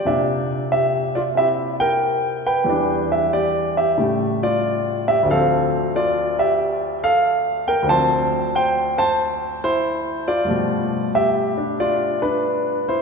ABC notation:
X:1
M:4/4
L:1/8
Q:"Swing" 1/4=92
K:Ddor
V:1 name="Grand piano"
[Gd] z [Ge] [Fd] [Ge] [_Bg]2 [=Bg]- | [Bg] [Ge] [Gd] [Ge]2 [Fd]2 [Ge] | [Af]2 [Fd] [Ge]2 [Af]2 [_Bg] | [ca]2 [cg] [ca]2 [Ec]2 [Fd]- |
[Fd]2 [Ge]2 [Fd] [DB]2 [Ec] |]
V:2 name="Grand piano" clef=bass
[_B,,C,De]4 [CE]4 | [E,,E,G,D]4 [A,,^C,G,A,]4 | [D,,D,F,C]8 | [D,,D,F,C]8 |
[G,,B,,F,A,]3 [G,D]4- [G,D] |]